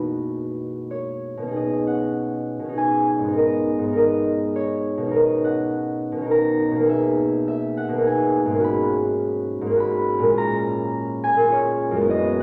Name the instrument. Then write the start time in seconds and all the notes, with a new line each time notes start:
harp
Already playing: B2 A#3 B3 D#4 F#4 B4 B5 B6
0.91 C#5
1.37 B2
1.42 C#4
1.47 D#4
1.51 G#4
1.56 D#5
1.87 F#5
2.59 B2
2.64 C#4
2.69 D#4
2.73 G#4
2.78 G#5
3.19 G#2
3.23 B3
3.28 D#4
3.33 A#4
3.38 D#5
3.78 G#2
3.83 B3
3.88 D#4
3.93 A#4
3.97 D#5
4.56 C#5
4.97 B2
5.02 C#4
5.07 D#4
5.11 A#4
5.16 D#5
5.44 F#5
6.12 B2
6.17 C#4
6.21 D#4
6.26 A#4
6.31 A#5
6.71 B2
6.76 A#3
6.80 D#4
6.85 G#4
6.89 E5
7.48 E5
7.77 F#5
7.88 B2
7.93 A#3
7.98 D#4
8.02 G#4
8.07 G#5
8.45 G#2
8.50 A#3
8.55 C#4
8.59 F#4
8.64 B5
9.61 G#2
9.66 A#3
9.70 C#4
9.75 F#4
9.80 B5
10.19 A#2
10.23 G#3
10.28 C#4
10.33 F4
10.38 A#5
11.24 G#5
11.34 A#2
11.39 G#3
11.43 C#4
11.48 F4
11.52 C#5
11.91 F#2
11.96 G#3
12.00 B3
12.05 E4
12.10 D#5